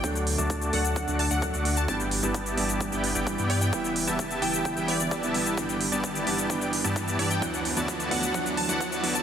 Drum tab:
HH |xxoxxxoxxxoxxxox|xxoxxxoxxxo-xxox|xxoxxxoxxxoxxxox|xxoxxxoxxxoxxxox|
SH |xx-xxx-xxx-xxx-x|xx-xxx-xxx-xxx-x|xx-xxx-xxx-xxx-x|xx-xxx-xxx-xxx-x|
BD |o---o---o---o---|o---o---o---o---|o---o---o---o---|o---o---o---o---|

HH |xxo-xxoxxxoxxxox|
SH |xx-xxx-xxx-xxx-x|
BD |o---o---o---o---|